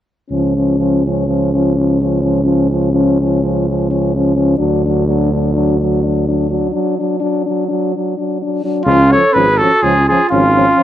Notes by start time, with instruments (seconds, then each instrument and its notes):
0.30 tuba C#2, euphonium F3, french horn C#4
0.56 euphonium F3, french horn C#4
0.78 euphonium F3, french horn C#4
1.05 euphonium F3, french horn C#4
1.27 euphonium F3, french horn C#4
1.54 euphonium F3, french horn C#4
1.76 euphonium F3, french horn C#4
2.01 euphonium F3, french horn C#4
2.21 euphonium F3, french horn C#4
2.43 euphonium F3, french horn C#4
2.70 euphonium F3, french horn C#4
2.92 euphonium F3, french horn C#4
3.21 euphonium F3, french horn C#4
3.42 euphonium F3, french horn C#4
3.68 euphonium F3, french horn C#4
3.90 euphonium F3, french horn C#4
4.15 euphonium F3, french horn C#4
4.36 euphonium F3, french horn C#4
4.57 tuba D2, euphonium F#3, french horn D4
4.85 euphonium F#3, french horn D4
5.07 euphonium F#3, french horn D4
5.32 euphonium F#3, french horn D4
5.53 euphonium F#3, french horn D4
5.80 euphonium F#3, french horn D4
6.03 euphonium F#3, french horn D4
6.28 euphonium F#3, french horn D4
6.50 euphonium F#3, french horn D4
6.71 euphonium F#3, french horn D4
6.98 euphonium F#3, french horn D4
7.20 euphonium F#3, french horn D4
7.46 euphonium F#3, french horn D4
7.68 euphonium F#3, french horn D4
7.95 euphonium F#3, french horn D4
8.17 euphonium F#3, french horn D4
8.42 euphonium F#3, french horn D4
8.64 euphonium F#3, french horn D4
8.85 tuba C#2, euphonium F3, french horn C#4, clarinet C#4, trumpet F4
9.11 euphonium F3, french horn C#4, clarinet A4, trumpet C#5
9.33 tuba G#1, euphonium F3, french horn C#4, trumpet B4
9.37 clarinet G#4
9.57 euphonium F3, french horn C#4, clarinet F#4, trumpet A4
9.81 tuba C#2, euphonium F3, french horn C#4, clarinet F4, trumpet G#4
10.07 euphonium F3, french horn C#4, clarinet F4, trumpet G#4
10.30 tuba G#1, euphonium F3, clarinet C#4, french horn C#4, trumpet F4
10.55 euphonium F3, french horn C#4
10.76 euphonium F3, french horn C#4